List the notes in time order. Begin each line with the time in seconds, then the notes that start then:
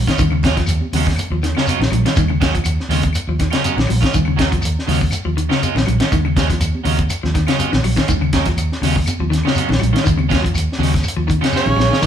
0.07 D#3 G#3 C#4 F4, kick, snare, closed hi-hat
0.18 D#2 D#3, kick, closed hi-hat, low conga, shekere
0.30 C#3, muted clean electric guitar stroke, claves
0.43 F#3 G#3 C#4 F4, kick, snare, closed hi-hat, high conga, shekere
0.57 F3, muted clean electric guitar stroke, kick, snare, closed hi-hat
0.66 D#2, closed hi-hat, claves, shekere
0.70 muted clean electric guitar stroke
0.81 high conga
0.93 D#2 C#3 F#3 G#3 C#4 F4, open hi-hat, high conga, low conga, shekere
1.07 muted clean electric guitar stroke, kick, snare
1.16 muted clean electric guitar stroke, closed hi-hat, claves, shekere
1.30 D#2 F3
1.42 D#3, muted clean electric guitar stroke, snare, closed hi-hat, shekere
1.55 C#3 F#3 G#3 C#4 F4, snare, claves
1.67 F#3 G#3 C#4 F4, muted fingered electric bass stroke, closed hi-hat, high conga, shekere
1.79 A#1 D#3, muted clean electric guitar stroke, snare, high conga
1.90 A#1 F#3, muted clean electric guitar stroke, closed hi-hat, low conga, claves, shekere
2.06 D#3 G#3 C#4 F4, snare, closed hi-hat
2.16 D#2 D#3, kick, closed hi-hat, low conga, shekere
2.28 C#3, muted clean electric guitar stroke, claves
2.40 F#3 G#3 C#4 F4, kick, snare, closed hi-hat, high conga, shekere
2.55 F3, muted clean electric guitar stroke, kick, closed hi-hat
2.64 D#2, muted clean electric guitar stroke, closed hi-hat, claves, shekere
2.80 snare
2.89 D#2 C#3 G#3 C#4 F4, muted clean electric guitar stroke, snare, open hi-hat, high conga, low conga, shekere
3.03 muted clean electric guitar stroke, kick, closed hi-hat
3.13 muted clean electric guitar stroke, closed hi-hat, claves, shekere
3.28 D#2 F3
3.39 D#3, muted clean electric guitar stroke, kick, snare, closed hi-hat, shekere
3.50 C#3 F#3 G#3 C#4 F4, snare, closed hi-hat, claves
3.63 F#3 G#3 C#4 F4, muted fingered electric bass stroke, closed hi-hat, high conga, shekere
3.76 A#1 D#3, muted clean electric guitar stroke, snare, high conga
3.87 A#1 F#3, muted clean electric guitar stroke, open hi-hat, low conga, claves, shekere
4.01 D#3 G#3 C#4 F4, kick, snare, closed hi-hat
4.13 D#2 D#3, kick, closed hi-hat, low conga, shekere
4.25 C#3, muted clean electric guitar stroke, claves
4.36 F#3 G#3 C#4 F4, kick, snare, closed hi-hat, high conga, shekere
4.49 F3, muted clean electric guitar stroke, kick, closed hi-hat
4.61 D#2, muted clean electric guitar stroke, closed hi-hat, claves, shekere
4.79 snare
4.87 D#2 C#3 F#3 G#3 C#4 F4, snare, open hi-hat, high conga, low conga, shekere
5.00 muted clean electric guitar stroke, kick
5.11 muted clean electric guitar stroke, closed hi-hat, claves, shekere
5.25 D#2 F3
5.37 D#3, muted clean electric guitar stroke, closed hi-hat, shekere
5.49 C#3 F#3 G#3 C#4 F4, snare, claves
5.62 G#3 F4, muted clean electric guitar stroke, muted fingered electric bass stroke, closed hi-hat, high conga, shekere
5.75 A#1 D#3, muted clean electric guitar stroke, snare, high conga
5.86 A#1 F#3, muted clean electric guitar stroke, closed hi-hat, low conga, claves, shekere
6.00 D#3 G#3 C#4 F4, snare, closed hi-hat
6.12 D#2 D#3, kick, closed hi-hat, low conga, shekere
6.25 C#3, muted clean electric guitar stroke, claves
6.36 G#3 C#4 F4, muted clean electric guitar stroke, kick, snare, closed hi-hat, high conga, shekere
6.49 F3, muted clean electric guitar stroke, kick, snare, closed hi-hat
6.60 D#2, muted clean electric guitar stroke, closed hi-hat, claves, shekere
6.75 high conga
6.84 D#2 C#3 F#3 G#3 C#4 F4, open hi-hat, high conga, shekere
6.98 muted clean electric guitar stroke, kick, closed hi-hat
7.10 muted clean electric guitar stroke, closed hi-hat, claves, shekere
7.23 D#2 F3, snare
7.34 D#3, muted clean electric guitar stroke, kick, snare, closed hi-hat, shekere
7.47 C#3 F#3 G#3 C#4 F4, snare, closed hi-hat, claves
7.58 F#3 G#3 C#4 F4, muted fingered electric bass stroke, closed hi-hat, high conga, shekere
7.72 A#1 D#3, muted clean electric guitar stroke, snare, high conga
7.83 A#1 F#3, muted clean electric guitar stroke, open hi-hat, low conga, claves, shekere
7.96 D#3 G#3 C#4 F4, kick, snare, closed hi-hat
8.08 D#2 D#3, kick, closed hi-hat, low conga, shekere
8.21 C#3, muted clean electric guitar stroke, claves
8.33 F#3 G#3 C#4, muted clean electric guitar stroke, kick, snare, closed hi-hat, high conga, shekere
8.45 F3, muted clean electric guitar stroke, kick, snare, closed hi-hat
8.57 D#2, muted clean electric guitar stroke, closed hi-hat, claves, shekere
8.72 snare
8.82 D#2 C#3 F#3 G#3 C#4 F4, snare, open hi-hat, high conga, shekere
8.96 muted clean electric guitar stroke, kick
9.06 muted clean electric guitar stroke, closed hi-hat, high conga, claves, shekere
9.20 D#2 F3
9.30 D#3, muted clean electric guitar stroke, snare, closed hi-hat, shekere
9.44 C#3 F#3 G#3 C#4 F4, snare, claves
9.55 F#3 G#3 C#4 F4, muted fingered electric bass stroke, closed hi-hat, high conga, shekere
9.69 A#1 D#3, muted clean electric guitar stroke, snare, high conga
9.80 A#1 F#3, muted clean electric guitar stroke, closed hi-hat, low conga, claves, shekere
9.93 D#3 G#3 C#4 F4, snare, closed hi-hat
10.04 D#2 D#3, kick, closed hi-hat, low conga, shekere
10.17 C#3, muted clean electric guitar stroke, high conga, claves
10.29 F#3 G#3 C#4 F4, kick, closed hi-hat, high conga, shekere
10.33 snare
10.42 F3, muted clean electric guitar stroke, kick, closed hi-hat
10.54 D#2, muted clean electric guitar stroke, closed hi-hat, claves, shekere
10.72 snare
10.79 D#2 C#3 F#3 G#3 C#4, high conga, shekere
10.83 snare, open hi-hat
10.93 muted clean electric guitar stroke, kick, snare, closed hi-hat
11.03 muted clean electric guitar stroke, claves, shekere
11.08 closed hi-hat
11.17 D#2 F3
11.27 D#3, muted clean electric guitar stroke, kick, closed hi-hat, shekere
11.41 C#3 F#3 G#3 C#4 F4, snare, closed hi-hat, claves
11.52 C#3 F#3 C#4 F4, muted fingered electric bass stroke, snare, high conga, shekere
11.65 A#1 D#3, muted clean electric guitar stroke, high conga
11.76 A#1 F#3, muted clean electric guitar stroke, snare, low conga, claves, shekere
11.90 D#3 G#3 C#4 F4, snare
12.02 D#2 D#3 F#3 G#3 C#4 F4, kick, closed hi-hat, shekere